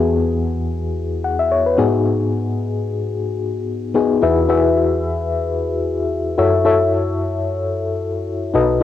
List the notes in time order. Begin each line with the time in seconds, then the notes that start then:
Already playing: E2 E3 B3 E4 F#4 G#4
1.24 F#5
1.39 E5
1.52 C#5
1.66 B4
1.78 G#2 B3 D#4 F#4 G#4
3.94 B3 D#4 F#4 G#4
4.22 E2 E3 E4 F#4 G#4 B4 E5
4.49 E4 F#4 G#4 B4 E5
6.38 F#2 E4 F#4 A4 C#5 E5
6.65 E4 F#4 A4 C#5 E5
8.54 B1 B2 D#4 F#4 A4 B4 D#5